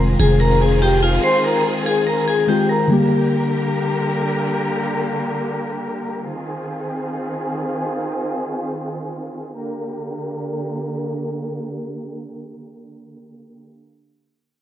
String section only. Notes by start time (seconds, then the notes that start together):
Already playing: D#3 C4 F4 G#4
2.90 D3 A#3 G4 A#4
6.24 D#3 C4 F4 G#4
9.57 D3 A#3 G4 A#4